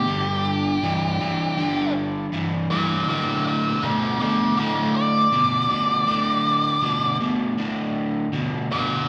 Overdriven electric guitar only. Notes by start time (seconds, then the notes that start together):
0.07 G2 D3
0.83 G2 E3
1.20 G2 E3
1.58 G2 D3
2.33 G2 E3
2.70 G2 E3
3.08 D2 A2
3.83 D2 B2
4.20 D2 B2
4.58 D2 A2
5.32 D2 B2
5.70 D2 B2
6.07 D2 A2
6.83 D2 B2
7.20 D2 B2
7.58 D2 A2
8.33 D2 B2
8.71 D2 B2